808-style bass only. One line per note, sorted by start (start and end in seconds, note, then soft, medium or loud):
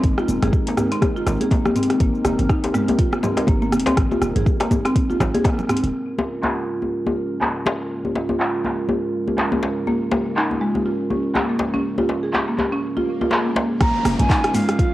0.04 0.14 G#1 loud
0.28 0.38 D#1 loud
0.43 0.50 G#1 loud
1.27 1.37 G#1 medium
2.00 2.10 G#1 loud
2.25 2.35 D#1 loud
2.39 2.46 G#1 loud
3.48 3.74 G#1 medium
3.72 3.83 D#1 loud
3.97 4.07 G#1 loud
4.22 4.32 D#1 loud
4.36 4.43 G#1 medium
5.20 5.30 G#1 medium
5.83 5.91 D#1 loud
13.81 13.91 A#1 loud
14.05 14.15 F1 loud
14.20 14.27 A#1 loud